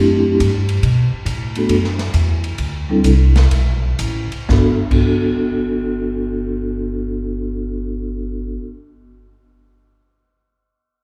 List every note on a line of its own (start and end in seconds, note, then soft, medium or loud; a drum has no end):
0.00 0.39 F#2 medium
0.00 0.38 A3 medium
0.00 0.38 C4 medium
0.00 0.38 D4 medium
0.00 0.38 E4 medium
0.00 0.39 G4 medium
0.40 0.82 G2 medium
0.40 kick soft
0.40 hi-hat pedal soft
0.40 ride medium
0.69 ride soft
0.83 1.10 B2 medium
0.83 kick soft
0.83 ride medium
1.13 muted upright bass stroke soft
1.25 1.68 A2 medium
1.25 kick soft
1.25 hi-hat pedal soft
1.25 ride medium
1.55 1.69 A3 medium
1.55 1.69 B3 medium
1.55 1.69 D4 medium
1.55 1.70 F#4 medium
1.55 1.70 A4 medium
1.55 ride soft
1.69 2.12 F#2 medium
1.69 kick soft
1.69 ride medium
1.84 snare soft
1.99 snare soft
1.99 ride soft
2.14 2.57 E2 medium
2.14 kick soft
2.14 hi-hat pedal soft
2.14 ride medium
2.44 ride soft
2.58 3.03 D2 medium
2.58 kick soft
2.58 ride medium
2.89 3.03 G3 medium
2.89 3.04 C4 medium
2.89 3.03 D4 medium
2.89 3.04 E4 medium
2.89 3.04 A4 medium
3.04 3.50 C2 medium
3.04 kick soft
3.04 hi-hat pedal medium
3.04 ride medium
3.36 snare medium
3.36 ride soft
3.51 3.98 B1 medium
3.51 kick soft
3.51 ride medium
3.99 4.30 A1 medium
3.99 kick soft
3.99 hi-hat pedal medium
3.99 ride medium
4.32 muted upright bass stroke soft
4.32 ride soft
4.49 4.68 G1 medium
4.49 4.69 B3 medium
4.49 4.70 D4 medium
4.49 4.71 F#4 medium
4.49 4.71 A4 medium
4.49 kick soft
4.49 snare medium
4.91 8.57 G1 medium
4.91 8.61 B3 medium
4.91 8.61 D4 medium
4.91 8.63 F#4 soft
4.91 8.64 A4 medium
4.91 kick soft
4.91 crash medium